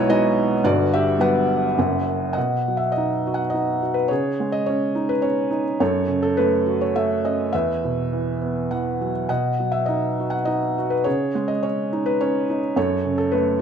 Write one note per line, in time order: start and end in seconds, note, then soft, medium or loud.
0.00 0.60 B1 medium
0.00 0.60 B2 medium
0.00 0.09 G#3 medium
0.00 0.10 B3 soft
0.00 0.10 D#4 medium
0.00 0.66 E4 medium
0.00 0.10 F#4 medium
0.00 0.65 B4 medium
0.00 0.10 C#5 medium
0.00 0.10 D#5 medium
0.00 0.66 F#5 loud
0.09 0.53 G#3 soft
0.09 0.53 B3 soft
0.09 0.54 D#4 medium
0.09 0.60 F#4 medium
0.09 0.66 D#5 medium
0.64 1.73 G1 medium
0.64 1.74 G2 medium
0.64 0.90 F#4 medium
0.64 0.93 D5 medium
0.94 1.19 G4 medium
0.94 1.21 E5 medium
1.19 1.65 F#3 soft
1.19 1.65 G3 soft
1.19 1.65 B3 soft
1.19 2.03 B4 medium
1.19 2.03 F#5 medium
1.78 2.33 F#1 medium
1.78 2.35 F#2 medium
2.33 2.90 D#5 soft
2.33 2.80 F#5 medium
2.37 4.07 B2 soft
2.68 3.79 F#3 soft
2.77 2.92 E5 medium
2.92 3.38 D#5 medium
2.97 3.53 D#4 soft
3.27 3.81 F#4 soft
3.34 3.51 F#5 medium
3.50 3.96 D#5 medium
3.54 4.09 D#4 soft
3.82 4.10 F#4 soft
3.94 4.10 B4 medium
4.08 5.77 C#3 soft
4.08 4.92 G#4 soft
4.08 4.53 C#5 medium
4.40 5.49 G#3 soft
4.52 4.67 D#5 medium
4.66 5.21 C#4 soft
4.66 5.10 C#5 medium
4.95 5.49 D#4 soft
5.09 5.24 B4 medium
5.22 5.78 C#4 soft
5.22 5.62 C#5 medium
5.51 5.79 D#4 soft
5.80 7.49 F#2 medium
5.80 6.21 A4 medium
5.80 6.25 C#5 medium
6.08 7.20 C#3 soft
6.22 6.38 A4 medium
6.37 6.94 A3 soft
6.37 6.82 B4 medium
6.66 7.50 F#4 soft
6.81 6.96 C#5 medium
6.96 7.51 A3 soft
6.96 7.22 E5 medium
7.24 7.52 C#4 soft
7.24 7.54 D#5 medium
7.53 9.26 E2 soft
7.53 8.67 B4 soft
7.53 8.73 E5 medium
7.84 8.98 B2 soft
8.13 8.70 E3 soft
8.41 9.27 B3 soft
8.71 9.29 E3 soft
8.71 9.12 F#5 medium
9.01 9.29 F#3 soft
9.29 11.03 B2 soft
9.29 9.84 D#5 soft
9.29 9.70 F#5 medium
9.60 10.74 F#3 soft
9.72 9.86 E5 medium
9.86 10.46 D#4 soft
9.86 10.33 D#5 medium
10.20 10.77 F#4 soft
10.30 10.47 F#5 medium
10.45 11.05 D#4 soft
10.45 10.92 D#5 medium
10.78 11.06 F#4 soft
10.90 11.06 B4 medium
11.04 12.72 C#3 medium
11.04 11.88 G#4 soft
11.04 11.50 C#5 medium
11.35 12.45 G#3 soft
11.48 11.64 D#5 medium
11.63 12.20 C#4 soft
11.63 12.03 C#5 medium
11.93 12.48 D#4 soft
12.06 12.21 B4 medium
12.21 12.75 C#4 soft
12.21 12.60 C#5 medium
12.50 12.76 D#4 soft
12.76 13.62 F#2 medium
12.76 13.16 A4 medium
12.76 13.20 C#5 medium
13.05 13.62 C#3 soft
13.18 13.32 A4 medium
13.32 13.62 A3 soft
13.32 13.62 B4 medium